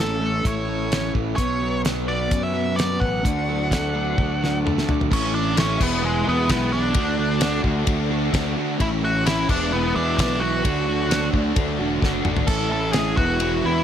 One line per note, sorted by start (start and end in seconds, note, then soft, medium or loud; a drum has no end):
0.00 0.41 A1 medium
0.00 0.20 A2 medium
0.00 0.21 E3 medium
0.00 0.19 A3 medium
0.00 0.20 A3 medium
0.00 0.91 C#4 medium
0.00 0.48 A4 medium
0.00 snare loud
0.20 1.36 A2 medium
0.20 1.37 E3 medium
0.20 1.36 A3 medium
0.45 1.11 A1 medium
0.45 1.38 E4 medium
0.45 1.12 C#5 medium
0.45 kick loud
0.45 closed hi-hat medium
0.69 1.39 A3 medium
0.92 1.39 C#4 medium
0.92 snare loud
0.92 closed hi-hat medium
1.15 1.37 A1 medium
1.15 1.38 E3 medium
1.15 kick medium
1.36 2.27 B1 medium
1.36 2.06 B2 medium
1.36 2.08 F#3 loud
1.36 2.06 B3 loud
1.36 1.81 C#5 loud
1.36 3.22 F#5 medium
1.36 kick loud
1.36 closed hi-hat medium
1.40 3.24 C#3 medium
1.40 3.24 B4 medium
1.62 2.07 F#3 medium
1.85 2.76 B3 medium
1.85 snare loud
1.85 closed hi-hat medium
2.07 3.23 B2 medium
2.07 3.23 F#3 medium
2.07 3.23 B3 medium
2.07 2.41 D5 medium
2.31 2.97 F#2 medium
2.31 3.24 C#4 medium
2.31 kick loud
2.31 closed hi-hat medium
2.43 2.79 E5 medium
2.53 3.24 F#3 medium
2.76 3.24 B3 medium
2.76 2.99 D5 medium
2.76 snare loud
2.76 closed hi-hat medium
3.00 3.23 A1 medium
3.00 3.24 B2 medium
3.00 4.59 F#5 medium
3.00 kick medium
3.23 4.14 D2 loud
3.23 3.92 D3 medium
3.23 3.93 A3 loud
3.23 5.07 D4 medium
3.23 5.07 A4 medium
3.23 5.08 F#5 medium
3.23 kick loud
3.23 closed hi-hat medium
3.27 3.92 D4 loud
3.48 3.94 F#3 medium
3.71 4.64 A3 medium
3.71 kick medium
3.71 snare loud
3.71 closed hi-hat medium
3.93 5.10 D3 medium
3.93 4.40 F#3 medium
3.93 5.09 A3 medium
3.93 5.08 D4 medium
4.18 4.84 D2 medium
4.18 5.10 D4 medium
4.18 kick loud
4.18 high tom medium
4.41 5.11 F#3 medium
4.41 snare medium
4.65 5.10 A3 medium
4.65 mid tom medium
4.78 snare medium
4.88 5.10 D2 medium
4.88 5.10 D3 medium
4.88 floor tom medium
5.01 floor tom medium
5.11 5.76 A1 medium
5.11 5.57 A2 loud
5.11 5.54 E3 medium
5.11 5.34 A3 loud
5.11 5.34 C#4 loud
5.11 5.80 C#4 medium
5.11 5.32 C#4 loud
5.11 5.31 E4 medium
5.11 5.80 A4 medium
5.11 5.79 E5 medium
5.11 kick loud
5.11 crash loud
5.32 5.54 A2 medium
5.32 5.55 E3 medium
5.32 5.55 A3 medium
5.32 5.56 C#4 medium
5.32 5.56 D4 loud
5.32 5.57 E4 medium
5.55 5.78 A2 medium
5.55 5.78 E3 medium
5.55 5.78 A3 medium
5.55 5.78 C#4 medium
5.55 5.77 E4 medium
5.55 snare loud
5.55 ride bell medium
5.60 5.82 C#4 loud
5.78 6.23 E1 loud
5.78 6.01 E2 medium
5.78 6.02 B2 loud
5.78 5.99 E3 medium
5.78 6.01 G#3 medium
5.78 6.02 B3 medium
5.78 6.94 B3 medium
5.78 6.04 B3 loud
5.78 6.02 E4 loud
5.78 6.94 G#4 medium
5.78 6.94 E5 medium
5.78 kick loud
5.78 crash loud
6.00 6.23 E2 medium
6.00 6.23 B2 loud
6.00 6.46 E3 medium
6.00 6.26 G#3 medium
6.00 6.25 B3 medium
6.00 6.23 E4 medium
6.05 6.25 G#3 medium
6.24 6.48 E2 loud
6.24 6.48 B2 loud
6.24 6.49 E3 loud
6.24 6.48 G#3 medium
6.24 6.49 B3 medium
6.24 6.50 E4 medium
6.28 6.48 E2 medium
6.28 6.50 B3 medium
6.48 6.92 B1 loud
6.48 6.72 E2 medium
6.48 6.72 B2 medium
6.48 6.92 E3 medium
6.48 6.73 G#3 medium
6.48 6.72 B3 medium
6.48 6.71 B3 loud
6.48 6.70 E4 loud
6.48 kick medium
6.48 snare loud
6.48 ride bell medium
6.71 6.94 E2 medium
6.71 6.94 B2 medium
6.71 6.95 E3 loud
6.71 6.93 G#3 medium
6.71 6.94 B3 medium
6.71 7.61 D4 medium
6.71 6.93 E4 medium
6.93 7.60 D2 loud
6.93 7.39 D3 loud
6.93 8.77 A3 medium
6.93 7.18 A3 loud
6.93 7.17 D4 loud
6.93 8.77 F#4 medium
6.93 7.15 F#4 loud
6.93 8.77 D5 medium
6.93 kick loud
6.93 ride bell medium
7.16 7.40 D3 medium
7.16 7.40 A3 medium
7.16 7.41 D4 medium
7.16 7.43 F#4 medium
7.40 7.64 D3 medium
7.40 7.63 A3 medium
7.40 7.63 D4 medium
7.40 7.62 F#4 medium
7.40 snare loud
7.40 ride bell medium
7.63 7.86 D2 loud
7.63 7.85 D3 medium
7.63 7.86 A3 medium
7.63 7.87 D4 medium
7.63 7.88 F#4 loud
7.63 kick medium
7.86 8.30 D2 medium
7.86 8.30 D3 medium
7.86 8.12 A3 medium
7.86 8.10 D4 medium
7.86 8.08 F#4 medium
7.86 kick loud
7.86 ride bell medium
8.09 8.33 D3 medium
8.09 8.32 A3 medium
8.09 8.33 D4 medium
8.09 8.34 F#4 medium
8.31 8.77 D3 medium
8.31 8.56 A3 medium
8.31 8.56 D4 loud
8.31 8.54 F#4 loud
8.31 kick medium
8.31 snare loud
8.31 ride bell medium
8.55 8.78 D3 medium
8.55 8.79 A3 medium
8.55 8.78 D4 medium
8.55 8.77 F#4 medium
8.78 9.45 A1 loud
8.78 9.25 A2 loud
8.78 9.25 E3 loud
8.78 9.03 A3 medium
8.78 9.48 A3 medium
8.78 9.02 C#4 loud
8.78 9.00 E4 loud
8.78 9.49 E4 medium
8.78 8.87 E4 loud
8.78 9.48 C#5 medium
8.78 kick loud
8.78 ride bell medium
9.01 9.25 A2 medium
9.01 9.25 E3 medium
9.01 9.26 A3 medium
9.01 9.27 C#4 medium
9.01 9.28 E4 medium
9.01 9.27 F#4 loud
9.26 9.47 A2 medium
9.26 9.47 E3 medium
9.26 9.48 A3 medium
9.26 9.49 C#4 medium
9.26 9.47 E4 loud
9.26 9.48 E4 medium
9.26 snare loud
9.26 ride bell medium
9.49 9.92 E1 loud
9.49 9.71 E2 medium
9.49 9.72 B2 medium
9.49 9.72 E3 medium
9.49 10.64 G#3 medium
9.49 9.73 G#3 medium
9.49 9.74 B3 medium
9.49 9.71 D4 medium
9.49 9.75 E4 medium
9.49 10.64 E4 medium
9.49 10.63 B4 medium
9.49 kick loud
9.49 crash loud
9.72 9.95 E2 loud
9.72 9.95 B2 loud
9.72 10.17 E3 medium
9.72 9.96 G#3 medium
9.72 9.93 B3 loud
9.72 9.96 B3 medium
9.77 9.94 E4 medium
9.95 10.18 E2 medium
9.95 10.17 E2 medium
9.95 10.18 B2 medium
9.95 10.19 E3 loud
9.95 10.18 G#3 medium
9.95 10.19 B3 medium
9.95 10.16 D4 loud
9.95 10.20 E4 medium
10.18 10.61 B1 loud
10.18 10.41 E2 medium
10.18 10.42 B2 medium
10.18 10.62 E3 medium
10.18 10.42 G#3 loud
10.18 10.41 B3 loud
10.18 10.41 D4 medium
10.18 10.38 E4 medium
10.18 kick medium
10.18 snare loud
10.18 ride bell loud
10.39 10.63 E2 medium
10.39 10.64 B2 loud
10.39 10.63 G#3 medium
10.39 10.63 B3 medium
10.39 10.62 E4 medium
10.39 11.28 F#4 medium
10.43 10.64 E3 loud
10.62 11.30 D2 loud
10.62 11.07 D3 loud
10.62 12.46 F#3 medium
10.62 10.87 A3 loud
10.62 12.46 D4 medium
10.62 10.86 D4 loud
10.62 10.85 F#4 loud
10.62 12.46 A4 medium
10.62 kick loud
10.62 ride bell medium
10.66 10.87 D3 loud
10.86 11.11 D3 medium
10.86 11.08 A3 medium
10.86 11.09 D4 medium
10.86 11.10 F#4 medium
11.08 11.34 D3 medium
11.08 11.33 A3 medium
11.08 11.32 D4 medium
11.08 11.31 F#4 medium
11.08 snare loud
11.08 ride bell medium
11.32 11.54 D2 loud
11.32 11.53 D3 medium
11.32 11.55 A3 medium
11.32 11.56 D4 medium
11.32 11.56 F#4 medium
11.32 kick medium
11.38 11.57 D4 medium
11.54 11.77 D2 medium
11.54 12.01 D3 medium
11.54 11.81 A3 medium
11.54 11.79 D4 medium
11.54 11.77 F#4 medium
11.54 kick loud
11.54 ride bell medium
11.78 11.99 E1 medium
11.78 12.02 D3 medium
11.78 12.02 A3 soft
11.78 12.03 D4 medium
11.78 12.04 F#4 medium
12.02 12.23 F#1 medium
12.02 12.47 D3 medium
12.02 12.28 A3 medium
12.02 12.26 D4 medium
12.02 12.24 F#4 loud
12.02 kick medium
12.02 snare medium
12.25 12.46 G#1 medium
12.25 12.47 D3 medium
12.25 12.49 A3 medium
12.25 12.48 D4 medium
12.25 12.47 F#4 medium
12.25 mid tom medium
12.37 floor tom medium
12.46 13.13 A1 loud
12.46 12.94 A2 loud
12.46 13.14 E3 medium
12.46 12.94 E3 loud
12.46 12.73 A3 loud
12.46 13.16 C#4 medium
12.46 12.70 A4 loud
12.46 13.17 A4 medium
12.46 kick loud
12.46 crash loud
12.46 splash medium
12.51 12.71 C#4 loud
12.51 12.69 E4 loud
12.70 12.94 A2 medium
12.70 12.95 E3 medium
12.70 12.96 C#4 medium
12.70 12.96 E4 medium
12.70 12.92 A4 loud
12.74 12.95 A3 medium
12.93 13.17 A2 medium
12.93 13.16 E3 medium
12.93 13.17 A3 medium
12.93 13.17 G#4 loud
12.93 snare loud
12.93 ride bell medium
12.97 13.17 C#4 medium
12.97 13.17 E4 medium
13.14 13.60 E1 loud
13.14 13.40 E2 medium
13.14 13.40 B2 medium
13.14 13.84 E3 medium
13.14 13.84 B3 medium
13.14 13.43 E4 medium
13.14 13.65 F#4 loud
13.14 13.84 G#4 medium
13.14 kick loud
13.19 13.40 E3 medium
13.19 13.41 G#3 medium
13.19 13.42 B3 medium
13.40 13.62 E2 loud
13.40 13.62 B2 loud
13.40 13.84 E3 medium
13.40 13.67 G#3 medium
13.40 13.65 B3 medium
13.40 13.64 E4 medium
13.40 ride bell medium
13.63 13.84 E2 loud
13.63 13.84 E2 medium
13.63 13.84 B2 loud
13.63 13.84 E3 loud
13.63 13.84 B3 medium
13.63 13.84 E4 medium
13.63 13.84 E4 loud
13.68 13.84 G#3 medium